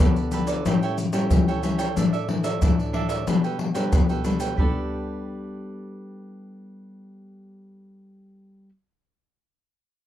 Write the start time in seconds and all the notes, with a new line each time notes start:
0.00 D3 B3 D4 G4 A4 B4 D5, pandeiro, maracas, surdo
0.16 pandeiro, maracas
0.32 G4 A4 B4 D5, pandeiro, maracas
0.47 A4 B4 D5, pandeiro, maracas
0.65 A2 G3 C#4 E4 G4 A4 C#5 G5, pandeiro, maracas, surdo
0.83 A4 C#5 G5, pandeiro, maracas
0.98 muted cavaquinho stroke, pandeiro, maracas
1.13 G3 C#4 E4 A4 C#5 G5, pandeiro, maracas
1.31 E3, pandeiro, maracas, surdo
1.48 A4 C#5 G5, pandeiro, maracas
1.63 G3 C#4 E4 G4 A4 C#5 G5, pandeiro, maracas
1.78 A4 C#5 G5, pandeiro, maracas
1.96 A2 E3 A3 D4 A4 D5 E5, pandeiro, maracas, surdo
2.13 A4 D5 E5, pandeiro, maracas
2.28 E3 A3 D4, muted cavaquinho stroke, pandeiro
2.44 A4 D5 E5, pandeiro, maracas
2.61 A2 E3 A3 D4 A4 D5 E5, pandeiro, maracas, surdo
2.79 pandeiro, maracas
2.93 D4 A4 D5 E5, pandeiro
3.09 A4 D5 E5, pandeiro, maracas
3.27 B2 G3 A3 D4 A4 B4 G5, pandeiro, maracas, surdo
3.44 A4 B4 G5, pandeiro, maracas
3.59 muted cavaquinho stroke, pandeiro
3.74 G3 A3 D4 A4 B4 G5, pandeiro, maracas
3.92 B2, pandeiro, maracas, surdo
4.09 A4 B4 G5, pandeiro, maracas
4.24 G3 A3 D4 A4 B4 G5, pandeiro, maracas
4.40 A4 B4 G5, pandeiro, maracas
4.56 G3 B3 G4 A4 B4 D5, surdo
4.61 D4 A4